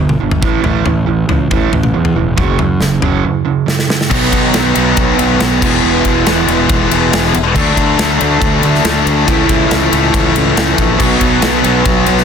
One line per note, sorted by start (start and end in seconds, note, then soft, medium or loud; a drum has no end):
0.00 0.16 G1 medium
0.00 0.18 G2 medium
0.00 0.18 D3 medium
0.09 mid tom medium
0.20 0.41 G1 medium
0.20 0.40 G2 medium
0.20 0.41 D3 medium
0.31 floor tom medium
0.42 0.62 A1 medium
0.42 0.62 A2 medium
0.42 0.63 E3 medium
0.42 0.63 A3 medium
0.42 kick loud
0.63 0.83 A1 medium
0.63 0.84 A2 medium
0.63 0.84 E3 medium
0.63 0.85 A3 medium
0.63 floor tom medium
0.85 1.06 A1 medium
0.85 1.05 A2 medium
0.85 1.06 E3 medium
0.85 floor tom medium
1.06 1.27 A1 medium
1.06 1.27 A2 medium
1.06 1.27 E3 medium
1.29 1.49 C#2 medium
1.29 1.49 A2 medium
1.29 1.49 E3 medium
1.29 floor tom medium
1.51 1.71 A1 medium
1.51 1.71 A2 medium
1.51 1.72 E3 medium
1.51 1.72 A3 medium
1.51 kick loud
1.51 floor tom medium
1.72 1.92 A1 medium
1.72 1.92 A2 medium
1.72 1.92 E3 medium
1.72 floor tom medium
1.83 mid tom medium
1.93 2.14 E2 medium
1.93 2.14 A2 medium
1.93 2.14 E3 medium
2.05 floor tom medium
2.16 2.36 E1 medium
2.16 2.36 A2 medium
2.16 2.36 E3 medium
2.36 2.57 F#1 loud
2.36 2.58 F#2 medium
2.36 2.58 C#3 medium
2.36 2.58 F#3 loud
2.36 kick loud
2.36 floor tom medium
2.59 2.79 F#2 medium
2.59 2.79 C#3 medium
2.59 floor tom medium
2.81 3.00 F#1 medium
2.81 3.00 F#2 medium
2.81 3.01 C#3 medium
2.81 snare medium
3.02 3.22 F#1 medium
3.02 3.23 F#2 medium
3.02 3.23 C#3 medium
3.02 3.24 F#3 loud
3.02 floor tom medium
3.24 3.44 F#2 medium
3.24 3.44 C#3 medium
3.45 3.65 F#2 medium
3.45 3.65 C#3 medium
3.66 3.86 F#2 medium
3.66 3.87 C#3 medium
3.66 snare medium
3.79 snare medium
3.89 4.08 F#2 medium
3.89 4.09 C#3 medium
3.89 snare medium
4.01 snare medium
4.09 4.29 B1 medium
4.09 5.60 B2 medium
4.09 4.74 B2 medium
4.09 4.74 D#3 medium
4.09 5.64 F#3 medium
4.09 4.77 F#3 loud
4.09 5.61 B3 loud
4.09 4.75 D#4 loud
4.09 kick loud
4.09 crash loud
4.14 4.75 B3 loud
4.33 4.50 B1 medium
4.33 kick medium
4.33 ride medium
4.54 4.73 B1 medium
4.54 snare loud
4.54 ride medium
4.75 4.94 B1 medium
4.75 5.39 B2 medium
4.75 5.61 D#3 medium
4.75 5.42 F#3 medium
4.75 5.39 B3 medium
4.75 5.61 D#4 medium
4.75 ride medium
4.97 5.15 B1 medium
4.97 kick loud
4.97 ride medium
5.19 5.37 B1 medium
5.19 ride medium
5.40 5.59 B1 medium
5.40 5.60 B2 medium
5.40 5.64 F#3 medium
5.40 5.62 B3 medium
5.40 snare loud
5.40 ride loud
5.61 5.80 E1 medium
5.61 7.33 E2 loud
5.61 6.25 E2 medium
5.61 7.34 B2 medium
5.61 6.26 B2 medium
5.61 7.34 E3 loud
5.61 6.27 E3 medium
5.61 6.26 G#3 medium
5.61 6.26 B3 loud
5.61 6.27 E4 loud
5.61 kick loud
5.61 crash loud
5.84 6.01 E1 loud
6.05 6.23 E1 medium
6.05 kick medium
6.05 ride medium
6.26 6.45 E1 medium
6.26 6.90 E2 medium
6.26 6.91 B2 medium
6.26 6.90 E3 medium
6.26 7.34 G#3 medium
6.26 7.34 B3 medium
6.26 7.35 E4 medium
6.26 snare loud
6.26 ride loud
6.48 6.66 E1 medium
6.48 ride medium
6.69 6.87 E1 medium
6.69 kick loud
6.69 ride loud
6.91 7.10 E1 medium
6.91 7.34 E2 medium
6.91 7.34 B2 medium
6.91 7.33 E3 medium
6.91 ride medium
7.13 7.31 E1 medium
7.13 snare loud
7.13 ride loud
7.25 snare soft
7.34 7.53 E1 medium
7.34 ride medium
7.54 7.74 D2 loud
7.54 9.26 D3 medium
7.54 8.19 D3 medium
7.54 8.20 F#3 medium
7.54 9.27 A3 loud
7.54 8.21 A3 loud
7.54 9.27 D4 loud
7.54 kick loud
7.54 crash medium
7.58 8.18 D4 loud
7.77 7.95 D2 medium
7.77 kick medium
7.77 ride medium
7.99 8.17 D2 medium
7.99 snare loud
7.99 ride medium
8.19 8.39 D2 loud
8.19 8.83 D3 medium
8.19 9.27 F#3 medium
8.19 8.84 A3 medium
8.19 8.83 D4 medium
8.19 ride medium
8.42 8.60 D2 loud
8.42 kick loud
8.42 ride medium
8.63 8.82 D2 medium
8.63 ride medium
8.75 snare soft
8.84 9.02 D2 medium
8.84 9.26 D3 medium
8.84 9.27 A3 medium
8.84 9.28 D4 medium
8.84 snare loud
8.84 ride loud
9.06 9.24 D2 medium
9.06 ride medium
9.26 9.46 C#2 loud
9.26 10.97 A2 medium
9.26 9.91 A2 loud
9.26 9.91 C#3 medium
9.26 10.99 E3 loud
9.26 9.92 E3 loud
9.26 11.00 A3 medium
9.26 9.90 A3 loud
9.26 9.89 E4 loud
9.26 kick loud
9.26 ride loud
9.49 9.67 C#2 medium
9.49 kick medium
9.49 ride medium
9.71 9.89 C#2 medium
9.71 snare loud
9.71 ride loud
9.91 10.10 C#2 medium
9.91 10.98 C#3 medium
9.91 10.56 E3 medium
9.91 10.55 A3 medium
9.91 10.98 E4 medium
9.91 ride medium
9.95 10.55 A2 medium
10.14 10.32 C#2 medium
10.14 kick loud
10.14 ride loud
10.35 10.53 C#2 medium
10.35 ride medium
10.56 10.75 C#2 medium
10.56 10.98 A2 medium
10.56 10.99 E3 medium
10.56 11.00 A3 medium
10.56 snare loud
10.56 ride loud
10.78 10.96 A#1 medium
10.78 kick medium
10.78 ride medium
10.98 11.18 B1 loud
10.98 12.24 B2 medium
10.98 11.63 B2 medium
10.98 12.24 F#3 loud
10.98 11.65 F#3 medium
10.98 12.24 B3 loud
10.98 11.63 B3 medium
10.98 11.63 D#4 loud
10.98 kick loud
10.98 crash loud
11.21 11.39 B1 medium
11.21 kick medium
11.21 ride medium
11.42 11.61 B1 medium
11.42 snare loud
11.42 ride medium
11.64 11.82 B1 medium
11.64 12.24 B2 medium
11.64 12.24 F#3 medium
11.64 12.24 B3 medium
11.64 12.24 D#4 medium
11.64 ride medium
11.85 12.04 B1 medium
11.85 kick loud
11.85 ride medium
12.06 12.24 B1 medium
12.06 ride medium
12.18 snare soft